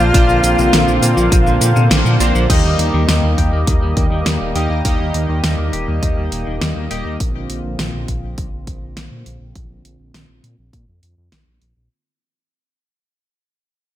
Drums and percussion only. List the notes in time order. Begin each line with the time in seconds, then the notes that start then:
0.00 shaker
0.14 kick, closed hi-hat, shaker
0.29 shaker
0.44 closed hi-hat, shaker
0.58 shaker
0.73 snare, closed hi-hat, shaker
0.88 shaker
1.03 closed hi-hat, shaker
1.17 shaker
1.32 kick, closed hi-hat, shaker
1.47 shaker
1.62 closed hi-hat, shaker
1.76 shaker
1.91 snare, closed hi-hat, shaker
2.06 shaker
2.20 closed hi-hat, shaker
2.35 shaker
2.50 kick, closed hi-hat, crash
2.79 closed hi-hat
3.09 snare, closed hi-hat
3.38 kick, closed hi-hat
3.67 kick, closed hi-hat
3.97 kick, closed hi-hat
4.26 snare, closed hi-hat
4.56 closed hi-hat
4.85 kick, closed hi-hat
5.14 closed hi-hat
5.44 snare, closed hi-hat
5.73 closed hi-hat
6.03 kick, closed hi-hat
6.32 closed hi-hat
6.62 snare, closed hi-hat
6.91 closed hi-hat
7.20 kick, closed hi-hat
7.50 closed hi-hat
7.79 snare, closed hi-hat
8.08 kick, closed hi-hat
8.38 kick, closed hi-hat
8.67 kick, closed hi-hat
8.97 snare, closed hi-hat
9.26 closed hi-hat
9.55 kick, closed hi-hat
9.85 closed hi-hat
10.14 snare, closed hi-hat
10.44 closed hi-hat
10.73 kick, closed hi-hat
11.03 closed hi-hat
11.32 snare, closed hi-hat
11.62 closed hi-hat